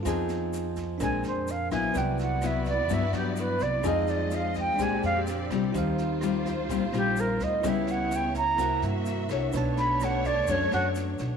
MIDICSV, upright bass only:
0, 0, Header, 1, 2, 480
1, 0, Start_track
1, 0, Tempo, 474308
1, 53, Time_signature, 4, 2, 24, 8
1, 11504, End_track
2, 0, Start_track
2, 0, Title_t, "Upright bass"
2, 0, Program_c, 0, 32
2, 56, Note_on_c, 0, 41, 93
2, 1013, Note_on_c, 0, 34, 104
2, 1028, Note_off_c, 0, 41, 0
2, 1237, Note_off_c, 0, 34, 0
2, 1252, Note_on_c, 0, 41, 89
2, 1699, Note_off_c, 0, 41, 0
2, 1736, Note_on_c, 0, 34, 78
2, 1958, Note_off_c, 0, 34, 0
2, 1972, Note_on_c, 0, 36, 92
2, 2928, Note_off_c, 0, 36, 0
2, 2928, Note_on_c, 0, 43, 103
2, 3154, Note_off_c, 0, 43, 0
2, 3166, Note_on_c, 0, 43, 95
2, 3616, Note_off_c, 0, 43, 0
2, 3644, Note_on_c, 0, 36, 78
2, 3872, Note_off_c, 0, 36, 0
2, 3883, Note_on_c, 0, 41, 95
2, 4846, Note_off_c, 0, 41, 0
2, 4846, Note_on_c, 0, 34, 113
2, 5073, Note_off_c, 0, 34, 0
2, 5092, Note_on_c, 0, 41, 91
2, 5539, Note_off_c, 0, 41, 0
2, 5570, Note_on_c, 0, 36, 74
2, 5795, Note_off_c, 0, 36, 0
2, 5811, Note_on_c, 0, 39, 107
2, 6771, Note_off_c, 0, 39, 0
2, 6771, Note_on_c, 0, 34, 99
2, 6995, Note_off_c, 0, 34, 0
2, 7007, Note_on_c, 0, 34, 90
2, 7456, Note_off_c, 0, 34, 0
2, 7492, Note_on_c, 0, 38, 84
2, 7715, Note_off_c, 0, 38, 0
2, 7733, Note_on_c, 0, 37, 105
2, 8690, Note_off_c, 0, 37, 0
2, 8690, Note_on_c, 0, 36, 111
2, 8914, Note_off_c, 0, 36, 0
2, 8929, Note_on_c, 0, 43, 90
2, 9376, Note_off_c, 0, 43, 0
2, 9406, Note_on_c, 0, 36, 82
2, 9632, Note_off_c, 0, 36, 0
2, 9653, Note_on_c, 0, 35, 103
2, 10613, Note_off_c, 0, 35, 0
2, 10613, Note_on_c, 0, 42, 109
2, 10836, Note_off_c, 0, 42, 0
2, 10859, Note_on_c, 0, 42, 94
2, 11302, Note_off_c, 0, 42, 0
2, 11329, Note_on_c, 0, 35, 82
2, 11504, Note_off_c, 0, 35, 0
2, 11504, End_track
0, 0, End_of_file